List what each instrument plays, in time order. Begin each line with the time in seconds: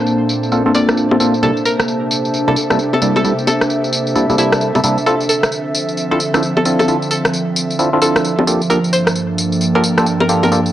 Already playing: analog synth pad A#2 C4 D4 A4 E5, ambient pad A#3 D4 C5 A5
0.06 tambourine
0.29 tambourine
0.43 tambourine
0.52 synth stab A#3 C4 D4 F4 A4, tambourine
0.66 synth stab A#3 C4 D4 F4 A4
0.74 synth stab A#3 C4 D4 F4 A4, synth pluck D5, tambourine
0.89 cross-stick, tambourine
0.97 tambourine
1.11 synth stab A#3 C4 D4 F4 A4, high bongo
1.20 synth stab A#3 C4 D4 F4 A4, tambourine
1.34 tambourine
1.43 synth stab C3 G3 A#3 D4 E4 A4, analog synth pad C3 A#3 G4 A4, synth pluck A4, tambourine
1.57 tambourine
1.65 synth pluck A#4, tambourine
1.74 ambient pad E5
1.80 cross-stick, tambourine
1.88 tambourine
2.11 tambourine
2.25 tambourine
2.34 tambourine
2.48 synth stab C3 G3 A#3 D4 E4 A4, synth pluck A4
2.56 tambourine
2.70 synth stab C3 G3 A#3 D4 E4 A4, cross-stick, tambourine
2.79 tambourine
2.93 synth pluck A4, high bongo
3.02 synth stab C3 G3 A#3 D4 E4 A4, tambourine
3.16 synth pluck A4, tambourine, high bongo
3.25 synth stab C3 G3 A#3 D4 E4 A4, tambourine
3.39 tambourine
3.47 synth pluck A4, tambourine, high bongo
3.61 cross-stick, tambourine
3.70 tambourine
3.84 tambourine
3.93 tambourine
4.07 tambourine
4.15 synth stab C3 G3 A#3 D4 E4 A4, tambourine
4.30 synth stab C3 G3 A#3 D4 E4 A4, tambourine
4.38 synth stab C3 G3 A#3 D4 E4 A4, synth pluck E4, tambourine
4.52 cross-stick, tambourine
4.61 tambourine
4.75 synth stab C3 G3 A#3 D4 E4 A4, tambourine, high bongo
4.84 synth stab C3 G3 A#3 D4 E4 A4, tambourine
4.98 tambourine
5.06 analog synth pad D3 F3 C4, synth stab C4 D4 E4 F4 A4, synth pluck A4, tambourine
5.20 tambourine
5.29 synth pluck A4, tambourine
5.37 ambient pad F3
5.43 cross-stick, tambourine
5.52 tambourine
5.75 tambourine
5.89 tambourine
5.97 tambourine
6.11 synth stab C4 D4 E4 F4 A4, synth pluck A4
6.20 tambourine
6.34 synth stab C4 D4 E4 F4 A4, cross-stick, tambourine
6.43 tambourine
6.57 synth pluck A4, high bongo
6.65 synth stab C4 D4 E4 F4 A4, tambourine
6.79 synth pluck A4, tambourine, high bongo
6.88 synth stab C4 D4 E4 F4 A4, tambourine
7.02 tambourine
7.11 synth pluck A4, tambourine
7.25 cross-stick, tambourine
7.33 tambourine
7.56 tambourine
7.70 tambourine
7.79 synth stab C4 D4 E4 F4 A4, tambourine
7.93 synth stab C4 D4 E4 F4 A4
8.02 synth stab C4 D4 E4 F4 A4, synth pluck A4, tambourine
8.16 cross-stick, tambourine
8.25 tambourine
8.39 synth stab C4 D4 E4 F4 A4, high bongo
8.47 analog synth pad G2 A#3 D4 A4, synth stab A#3 D4 F4 G4 A4, tambourine
8.58 ambient pad A#3, tambourine
8.70 synth stab A#3 D4 F4 G4 A4, synth pluck A#4, tambourine
8.84 tambourine
8.93 synth pluck C5, tambourine
9.07 cross-stick, tambourine
9.15 ambient pad G5, tambourine
9.38 tambourine
9.52 tambourine
9.61 tambourine
9.75 synth stab A#3 D4 F4 G4 A4, synth pluck A#4
9.84 tambourine
9.98 synth stab A#3 D4 F4 G4 A4, cross-stick, tambourine
10.06 tambourine
10.20 synth pluck A#4, high bongo
10.29 synth stab A#3 D4 F4 G4 A4, tambourine
10.43 synth pluck A#4, tambourine, high bongo
10.52 synth stab A#3 D4 F4 G4 A4, tambourine
10.66 tambourine